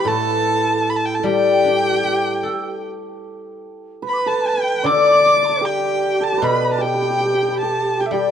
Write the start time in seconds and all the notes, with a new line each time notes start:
Already playing: E3 E4 G4 B4
0.04 A2 A4 A5
0.90 B5
0.96 A5
1.05 G5
1.15 A5
1.19 G3 A4 G5
1.24 G4 G5
1.64 D4
2.03 G4
2.43 A4
4.02 B4 B5
4.07 B4 B5
4.13 D6
4.18 B5
4.26 A4 A5
4.46 G5
4.82 D3 D5 D6
4.91 D5
4.96 D5
5.05 D5
5.11 D5
5.20 D5
5.26 D5
5.36 D5
5.43 D5 A5
5.49 D5
5.61 G4 G5
5.65 G5
6.20 A4 A5
6.32 D5
6.38 B4
6.42 B2 B5
6.73 A5
6.78 G4 G5
6.83 G4
6.94 G4
7.02 G4
7.10 G4
7.20 G4
7.25 G4
7.34 G4
7.42 G4
7.48 G4 B5
7.58 A5
7.63 A4
7.97 G4 G5
8.06 E5 G5
8.11 G3 G4 G5